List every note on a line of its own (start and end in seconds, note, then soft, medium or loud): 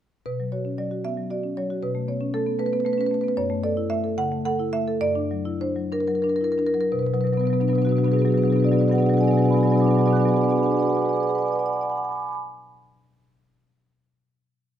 0.26 1.79 B2 medium
0.26 0.51 B4 medium
0.40 0.60 F#3 soft
0.52 0.73 F#4 soft
0.52 0.77 C#5 medium
0.65 0.86 C#4 soft
0.78 0.99 F#3 soft
0.78 1.03 D5 medium
0.91 1.12 F#4 soft
1.04 1.25 B3 soft
1.04 1.30 E5 medium
1.17 1.38 F#3 soft
1.31 1.51 F#4 medium
1.31 1.56 D5 medium
1.44 1.64 C#4 soft
1.57 1.78 F#3 medium
1.57 1.82 C#5 medium
1.70 1.83 F#4 soft
1.83 3.33 B2 medium
1.83 2.07 B4 medium
1.95 2.15 A3 soft
2.08 2.28 B3 soft
2.08 2.33 C#5 medium
2.21 2.41 C#4 medium
2.34 2.54 A3 medium
2.34 2.58 A4 medium
2.47 2.67 B3 soft
2.59 2.80 A3 medium
2.59 2.66 B4 medium
2.66 2.73 B4 medium
2.73 2.93 B3 medium
2.73 2.80 B4 medium
2.80 2.86 B4 medium
2.85 3.06 A3 medium
2.85 2.93 B4 medium
2.93 3.01 B4 medium
2.98 3.19 C#4 medium
2.98 3.07 B4 medium
3.07 3.14 B4 medium
3.11 3.32 A3 medium
3.11 3.21 B4 medium
3.21 3.37 B3 medium
3.21 3.28 B4 medium
3.28 3.34 B4 medium
3.37 4.97 F#2 medium
3.37 3.62 C#5 medium
3.50 3.71 A3 medium
3.64 3.85 A4 medium
3.64 3.89 D5 medium
3.77 3.98 E4 medium
3.90 4.12 A3 medium
3.90 4.16 E5 medium
4.04 4.25 A4 medium
4.18 4.39 C#3 medium
4.18 4.44 F#5 loud
4.32 4.53 A3 medium
4.45 4.67 A4 medium
4.45 4.72 F#5 loud
4.59 4.82 E4 medium
4.73 4.96 A3 medium
4.73 5.00 E5 loud
4.88 5.02 A4 medium
5.01 6.87 F#2 medium
5.01 5.58 D5 loud
5.15 5.39 D4 medium
5.31 5.54 F#3 medium
5.45 5.69 E4 medium
5.61 5.85 D4 medium
5.61 5.90 C5 medium
5.76 6.01 F#3 medium
5.92 6.17 D4 medium
5.92 6.00 A#4 medium
6.00 6.07 A#4 medium
6.07 6.33 F#3 medium
6.07 6.15 A#4 medium
6.15 6.22 A#4 medium
6.22 6.50 D4 medium
6.22 6.29 A#4 medium
6.29 6.36 A#4 medium
6.36 6.44 A#4 medium
6.41 6.68 E4 medium
6.41 6.52 A#4 medium
6.52 6.59 A#4 medium
6.58 6.85 D4 medium
6.58 6.67 A#4 medium
6.67 6.74 A#4 medium
6.74 6.91 F#3 medium
6.74 6.81 A#4 medium
6.81 6.88 A#4 medium
6.92 7.03 B2 medium
6.92 6.99 B4 medium
6.99 7.13 B2 medium
6.99 7.06 B4 medium
7.06 7.14 B4 medium
7.13 7.25 B2 medium
7.13 7.24 F#3 medium
7.13 7.21 B4 medium
7.21 7.32 F#3 medium
7.21 7.27 B4 medium
7.25 7.35 B2 medium
7.25 7.33 B4 medium
7.32 7.43 B2 medium
7.32 7.41 F#3 medium
7.32 7.40 B4 medium
7.37 7.50 F#3 medium
7.37 7.45 B3 medium
7.37 7.47 B4 medium
7.43 7.53 B2 medium
7.43 7.53 B3 soft
7.43 7.54 B4 medium
7.50 7.63 B2 medium
7.50 7.60 F#3 medium
7.50 7.62 B3 medium
7.54 7.61 B4 medium
7.60 7.73 B2 medium
7.60 7.69 F#3 medium
7.60 7.70 B3 medium
7.60 7.68 D4 medium
7.60 7.68 B4 medium
7.68 7.78 F#3 medium
7.68 7.78 B3 medium
7.68 7.75 D4 soft
7.68 7.76 B4 medium
7.73 7.83 B2 medium
7.73 7.82 D4 medium
7.73 7.82 B4 medium
7.78 7.87 F#3 medium
7.78 7.87 B3 medium
7.78 7.89 B4 medium
7.82 7.92 B2 medium
7.82 7.90 D4 soft
7.82 7.91 F#4 medium
7.87 7.98 F#3 medium
7.87 7.96 B3 medium
7.87 7.98 D4 medium
7.87 7.97 B4 medium
7.91 8.03 B2 medium
7.91 7.98 F#4 soft
7.96 8.08 F#3 medium
7.96 8.04 B3 soft
7.96 8.06 D4 soft
7.96 8.05 F#4 soft
7.96 8.05 B4 medium
8.03 8.14 B2 medium
8.03 8.13 B3 medium
8.03 8.14 D4 medium
8.03 8.13 F#4 soft
8.03 8.12 B4 medium
8.08 8.16 F#3 medium
8.08 8.19 G#4 medium
8.08 8.19 B4 medium
8.13 8.24 B2 medium
8.13 8.25 F#3 medium
8.13 8.22 B3 soft
8.13 8.22 D4 soft
8.13 8.20 F#4 soft
8.19 8.31 B3 medium
8.19 8.30 D4 soft
8.19 8.28 F#4 soft
8.19 8.28 G#4 soft
8.19 8.26 B4 medium
8.24 8.34 B2 medium
8.24 8.34 F#3 medium
8.24 8.35 F#4 soft
8.24 8.36 G#4 soft
8.24 8.32 B4 medium
8.30 8.43 B2 medium
8.30 8.43 F#3 medium
8.30 8.39 B3 medium
8.30 8.37 D4 soft
8.30 8.37 B4 medium
8.35 8.46 D4 medium
8.35 8.42 F#4 soft
8.35 8.42 G#4 soft
8.35 8.45 B4 medium
8.39 8.48 B3 medium
8.39 8.50 F#4 soft
8.39 8.50 G#4 soft
8.43 8.54 B2 medium
8.43 8.52 F#3 medium
8.43 8.53 D4 soft
8.43 8.53 B4 medium
8.48 8.56 B3 medium
8.48 8.57 F#4 soft
8.48 8.58 G#4 soft
8.52 8.64 B2 medium
8.52 8.62 F#3 medium
8.52 8.64 B3 medium
8.52 8.61 D4 medium
8.52 8.60 B4 medium
8.57 8.69 D4 soft
8.57 8.64 F#4 soft
8.57 8.66 G#4 soft
8.57 8.67 B4 medium
8.62 8.74 B2 medium
8.62 8.71 F#3 medium
8.62 8.73 B3 medium
8.62 8.72 F#4 soft
8.62 8.72 G#4 soft
8.62 8.72 D5 medium
8.67 8.77 D4 medium
8.67 8.74 B4 medium
8.71 8.85 B2 medium
8.71 8.82 F#3 medium
8.71 8.80 B3 medium
8.71 8.79 F#4 soft
8.71 8.81 G#4 soft
8.71 8.81 B4 medium
8.71 8.79 D5 soft
8.77 8.90 B3 medium
8.77 8.83 D4 soft
8.77 8.88 F#4 soft
8.77 8.88 G#4 soft
8.77 8.88 B4 medium
8.77 8.86 D5 medium
8.82 8.94 B2 medium
8.82 8.91 F#3 medium
8.82 8.91 D4 medium
8.86 8.98 B3 medium
8.86 8.95 F#4 soft
8.86 8.97 G#4 soft
8.86 8.95 B4 soft
8.86 8.92 D5 soft
8.91 9.04 B2 medium
8.91 9.00 F#3 medium
8.91 8.98 D4 soft
8.91 9.02 F#4 soft
8.91 8.99 D5 medium
8.91 8.99 F#5 medium
8.95 9.07 B3 medium
8.95 9.06 D4 medium
8.95 9.05 G#4 soft
8.95 9.03 B4 medium
8.95 9.06 D5 soft
8.95 9.06 F#5 soft
9.00 9.09 F#3 medium
9.00 9.09 F#4 soft
9.00 9.10 B4 medium
9.04 9.14 B2 medium
9.04 9.14 B3 medium
9.04 9.13 D4 soft
9.04 9.14 G#4 soft
9.04 9.13 D5 medium
9.04 9.12 F#5 soft
9.09 9.18 F#3 medium
9.09 9.17 F#4 soft
9.09 9.17 B4 medium
9.09 9.18 F#5 soft
9.13 9.23 B2 medium
9.13 9.23 B3 medium
9.13 9.21 D4 soft
9.13 9.24 F#4 soft
9.13 9.21 G#4 soft
9.13 9.21 D5 medium
9.17 9.28 F#3 medium
9.17 9.28 D4 soft
9.17 9.28 G#4 soft
9.17 9.24 B4 soft
9.17 9.27 D5 medium
9.17 9.26 F#5 medium
9.17 9.29 G#5 medium
9.23 9.33 B2 medium
9.23 9.31 B3 medium
9.23 9.31 F#4 soft
9.23 9.31 B4 medium
9.23 9.32 F#5 medium
9.27 9.37 F#3 medium
9.27 9.39 B3 medium
9.27 9.36 D4 medium
9.27 9.38 F#4 soft
9.27 9.37 G#4 soft
9.27 9.35 D5 medium
9.27 9.35 G#5 soft
9.31 9.43 B2 medium
9.31 9.39 B4 soft
9.31 9.42 D5 medium
9.31 9.38 F#5 soft
9.35 9.46 F#3 medium
9.35 9.49 B3 medium
9.35 9.42 D4 soft
9.35 9.45 F#4 soft
9.35 9.44 G#4 soft
9.35 9.46 B4 medium
9.35 9.44 F#5 soft
9.35 9.44 G#5 soft
9.42 9.54 B2 medium
9.42 9.54 F#3 medium
9.42 9.49 D4 soft
9.42 9.52 F#4 soft
9.42 9.52 G#4 soft
9.42 9.53 B4 soft
9.42 9.50 D5 soft
9.42 9.51 F#5 medium
9.42 9.51 G#5 soft
9.49 9.56 B3 medium
9.49 9.57 D4 soft
9.49 9.59 F#4 soft
9.49 9.61 G#4 soft
9.49 9.57 D5 medium
9.49 9.58 F#5 soft
9.49 9.58 G#5 soft
9.49 9.57 B5 medium
9.53 9.65 B2 medium
9.53 9.63 F#3 medium
9.53 9.65 B3 medium
9.53 9.61 B4 medium
9.57 9.65 D4 medium
9.57 9.67 F#4 soft
9.57 9.68 G#4 soft
9.57 9.68 B4 medium
9.57 9.63 D5 soft
9.57 9.65 F#5 soft
9.57 9.65 G#5 soft
9.57 9.64 B5 soft
9.63 9.76 B2 medium
9.63 9.72 F#3 medium
9.63 9.74 B3 soft
9.63 9.72 D4 soft
9.63 9.70 D5 medium
9.63 9.72 F#5 medium
9.63 9.71 G#5 soft
9.63 9.70 B5 soft
9.67 9.75 F#4 soft
9.67 9.76 G#4 soft
9.67 9.75 B4 medium
9.67 9.77 D5 medium
9.67 9.79 G#5 soft
9.67 9.77 B5 soft
9.72 9.80 F#3 medium
9.72 9.82 B3 medium
9.72 9.80 D4 medium
9.72 9.82 F#4 soft
9.72 9.81 B4 medium
9.72 9.79 F#5 medium
9.76 9.85 B2 medium
9.76 9.87 D4 medium
9.76 9.84 G#4 soft
9.76 9.84 D5 medium
9.76 9.85 F#5 soft
9.76 9.86 G#5 soft
9.76 9.85 B5 soft
9.80 9.89 F#3 medium
9.80 9.91 B3 medium
9.80 9.91 F#4 soft
9.80 9.88 B4 medium
9.80 9.91 D5 medium
9.80 9.88 D6 soft
9.84 9.96 B2 medium
9.84 9.95 D4 medium
9.84 9.92 G#4 soft
9.84 9.95 B4 soft
9.84 9.90 F#5 soft
9.84 9.94 G#5 soft
9.84 9.91 B5 soft
9.84 9.94 D6 soft
9.89 9.97 F#3 medium
9.89 9.99 B3 medium
9.89 9.98 F#4 soft
9.89 10.00 G#4 soft
9.89 9.99 D5 medium
9.89 9.97 F#5 medium
9.89 9.98 B5 soft
9.94 10.06 B2 medium
9.94 10.07 F#3 medium
9.94 10.03 D4 medium
9.94 10.01 B4 medium
9.94 10.04 F#5 medium
9.94 10.01 G#5 soft
9.94 10.00 D6 soft
9.98 10.08 B3 soft
9.98 10.06 F#4 soft
9.98 10.08 G#4 soft
9.98 10.08 B4 medium
9.98 10.06 D5 soft
9.98 10.09 G#5 soft
9.98 10.05 B5 soft
9.98 10.07 D6 soft
10.03 10.18 B2 medium
10.03 10.11 D4 medium
10.03 10.13 F#4 soft
10.03 10.13 D5 medium
10.03 10.10 F#5 medium
10.03 10.12 B5 soft
10.03 10.13 D6 soft
10.07 10.17 F#3 medium
10.07 10.16 B3 medium
10.07 10.19 D4 soft
10.07 10.16 G#4 soft
10.07 10.15 B4 medium
10.07 10.17 F#5 medium
10.07 10.16 G#5 soft
10.12 10.25 B3 medium
10.12 10.21 F#4 soft
10.12 10.24 G#4 soft
10.12 10.22 B4 medium
10.12 10.20 D5 soft
10.12 10.23 G#5 soft
10.12 10.19 B5 soft
10.12 10.19 D6 soft
10.12 12.38 F#6 medium
10.17 10.25 F#3 medium
10.17 10.27 D4 soft
10.17 10.28 D5 medium
10.17 10.24 F#5 medium
10.17 10.27 B5 soft
10.17 10.25 D6 soft
10.21 10.29 F#4 soft
10.21 10.32 G#4 soft
10.21 10.29 B4 medium
10.21 10.30 F#5 soft
10.21 10.30 G#5 soft
10.25 10.33 F#3 medium
10.25 10.34 B3 medium
10.25 10.34 D4 soft
10.25 10.36 F#4 soft
10.25 10.37 B4 medium
10.25 10.34 D5 soft
10.25 10.34 B5 soft
10.25 10.32 D6 soft
10.30 10.40 F#3 medium
10.30 10.43 B3 soft
10.30 10.41 D4 medium
10.30 10.41 G#4 soft
10.30 10.42 D5 medium
10.30 10.37 F#5 medium
10.30 10.37 G#5 soft
10.30 10.40 B5 soft
10.30 10.39 D6 soft
10.36 10.44 F#4 soft
10.36 10.44 B4 medium
10.36 10.44 F#5 medium
10.36 10.45 G#5 soft
10.36 10.45 D6 soft
10.40 10.52 B3 medium
10.40 10.48 D4 soft
10.40 10.51 F#4 soft
10.40 10.49 G#4 soft
10.40 10.51 B4 medium
10.40 10.49 D5 soft
10.40 10.50 F#5 soft
10.40 10.46 B5 soft
10.45 10.56 D4 medium
10.45 10.52 G#5 soft
10.45 10.54 B5 soft
10.45 10.51 D6 soft
10.49 10.63 B3 medium
10.49 10.59 F#4 soft
10.49 10.58 G#4 soft
10.49 10.58 B4 medium
10.49 10.57 D5 medium
10.49 10.56 F#5 medium
10.49 10.58 G#5 soft
10.49 10.58 D6 soft
10.54 10.62 D4 soft
10.54 10.64 D5 soft
10.54 10.63 F#5 medium
10.54 10.60 B5 soft
10.58 10.66 F#4 soft
10.58 10.66 G#4 soft
10.58 10.64 B4 medium
10.58 10.65 G#5 soft
10.58 10.67 B5 soft
10.58 10.65 D6 soft
10.62 10.70 D4 medium
10.62 10.75 F#4 soft
10.62 10.74 G#4 soft
10.62 10.71 B4 medium
10.62 10.72 D5 medium
10.62 10.69 F#5 medium
10.62 10.73 G#5 soft
10.62 10.71 D6 soft
10.67 10.77 D4 medium
10.67 10.79 B4 soft
10.67 10.77 F#5 soft
10.67 10.74 B5 soft
10.71 10.82 F#4 soft
10.71 10.82 G#4 soft
10.71 10.80 D5 medium
10.71 10.80 G#5 soft
10.71 10.82 B5 soft
10.71 10.77 D6 soft
10.77 10.87 D4 medium
10.77 10.85 B4 medium
10.77 10.87 D5 medium
10.77 10.83 F#5 medium
10.77 10.88 G#5 soft
10.77 10.84 D6 soft
10.82 10.90 F#4 soft
10.82 10.91 G#4 soft
10.82 10.93 B4 medium
10.82 10.89 F#5 soft
10.82 10.89 B5 soft
10.82 10.90 D6 soft
10.87 10.97 F#4 soft
10.87 10.95 D5 medium
10.87 10.95 F#5 medium
10.87 10.94 G#5 soft
10.87 10.95 B5 soft
10.87 10.97 D6 soft
10.91 10.98 G#4 soft
10.91 10.99 B4 medium
10.91 11.02 D5 medium
10.91 11.02 G#5 soft
10.95 11.04 F#4 soft
10.95 11.06 G#4 soft
10.95 11.06 B4 medium
10.95 11.02 F#5 soft
10.95 11.01 B5 soft
10.95 11.03 D6 soft
11.01 11.11 F#4 soft
11.01 11.09 D5 soft
11.01 11.08 F#5 soft
11.01 11.09 G#5 soft
11.01 11.09 B5 soft
11.01 11.11 D6 soft
11.06 11.14 G#4 soft
11.06 11.13 B4 medium
11.06 11.16 D5 medium
11.06 11.16 F#5 soft
11.06 11.17 G#5 soft
11.06 11.15 B5 soft
11.11 11.22 G#4 soft
11.11 11.20 B4 medium
11.11 11.17 D6 soft
11.15 11.23 D5 medium
11.15 11.23 F#5 medium
11.15 11.23 G#5 soft
11.15 11.23 B5 soft
11.15 11.24 D6 soft
11.20 11.29 G#4 soft
11.20 11.27 B4 medium
11.20 11.31 D5 medium
11.20 11.29 F#5 soft
11.20 11.31 G#5 soft
11.20 11.29 B5 soft
11.20 11.31 D6 soft
11.27 11.37 G#4 soft
11.27 11.35 B4 medium
11.27 11.38 D5 medium
11.27 11.35 F#5 medium
11.27 11.39 G#5 soft
11.27 11.35 B5 soft
11.27 11.37 D6 soft
11.35 11.42 B4 medium
11.35 11.45 D5 medium
11.35 11.40 F#5 soft
11.35 11.46 G#5 soft
11.35 11.42 B5 soft
11.35 11.43 D6 soft
11.40 11.48 B4 soft
11.40 11.47 F#5 soft
11.40 11.49 B5 soft
11.40 11.50 D6 soft
11.45 11.56 B4 medium
11.45 11.52 D5 medium
11.45 11.53 F#5 soft
11.45 11.53 G#5 soft
11.49 11.59 D5 medium
11.49 11.56 B5 soft
11.49 11.57 D6 soft
11.53 11.64 B4 medium
11.53 11.60 F#5 medium
11.53 11.61 G#5 soft
11.53 11.63 B5 soft
11.53 11.63 D6 soft
11.59 11.66 D5 medium
11.59 11.66 F#5 soft
11.59 11.68 G#5 soft
11.59 11.69 B5 soft
11.63 11.74 D5 medium
11.63 11.72 F#5 medium
11.63 11.70 D6 soft
11.68 11.76 G#5 soft
11.68 11.76 B5 soft
11.68 11.77 D6 soft
11.72 11.81 D5 soft
11.72 11.79 F#5 soft
11.72 11.83 G#5 soft
11.72 11.83 B5 soft
11.77 11.85 F#5 medium
11.77 11.83 D6 soft
11.81 11.90 D5 medium
11.81 11.90 G#5 soft
11.81 11.89 B5 soft
11.81 11.89 D6 soft
11.85 11.91 F#5 soft
11.85 11.96 B5 soft
11.89 11.98 F#5 medium
11.89 11.97 G#5 soft
11.89 11.97 D6 soft
11.96 12.05 F#5 medium
11.96 12.05 G#5 soft
11.96 12.02 B5 soft
11.96 12.04 D6 soft
12.02 12.12 F#5 soft
12.02 12.12 G#5 soft
12.02 12.09 B5 soft
12.02 12.11 D6 soft
12.09 12.18 F#5 soft
12.09 12.20 G#5 soft
12.09 12.15 B5 soft
12.09 12.17 D6 soft
12.15 12.22 B5 soft
12.15 12.24 D6 soft
12.20 12.27 G#5 soft
12.20 12.29 B5 soft
12.24 12.33 G#5 soft
12.24 12.31 D6 soft
12.29 12.35 B5 soft
12.29 12.38 D6 soft
12.33 12.39 G#5 soft
12.33 12.38 B5 soft